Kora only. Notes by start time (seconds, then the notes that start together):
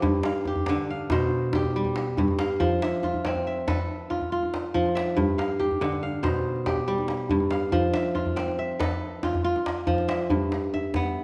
Already playing: F4 G4
0.02 G2
0.25 F5
0.47 G4
0.69 D3
0.90 F5
1.11 B2 C5
1.55 G4
1.76 G3
2.18 G2
2.39 F5
2.60 F3
2.82 E5
3.04 F4
3.26 C4
3.47 E5
3.68 A4 B4
4.10 F4
4.32 F4
4.74 F3
4.95 E5
5.16 G2
5.38 F5
5.59 G4
5.81 D3
6.03 F5
6.23 B2 C5
6.66 G4
6.88 G3
7.31 G2
7.51 F5
7.72 F3
7.94 E5
8.15 F4
8.36 C4
8.59 E5
8.79 A4 B4
9.24 F4
9.44 F4
9.87 F3
10.08 E5
10.30 G2
10.74 E5
10.96 B3